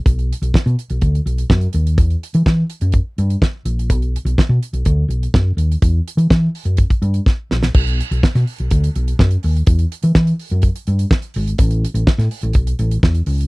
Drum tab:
CC |----------------|----------------|----------------|----------------|
HH |xxxx-xxxxxxx-xxx|xxxx--xxx-xx--xx|xxxx--xxx-xx--xx|x-xx--oxxxxx----|
SD |----o-------o---|----o-------o---|----o-------o---|----o-------o-oo|
BD |o---o---o---o---|o---o---o---o---|o---o---o---o---|o---o---oo--o---|

CC |x---------------|----------------|----------------|
HH |-xxx-xoxxxxx-xox|xxxx-xoxxxxx-xox|xxxx-xoxxxxx-xox|
SD |----oo------o---|----o-------o---|----oo------o---|
BD |o---o---o---o---|o---o---o---o---|o---o---o---o---|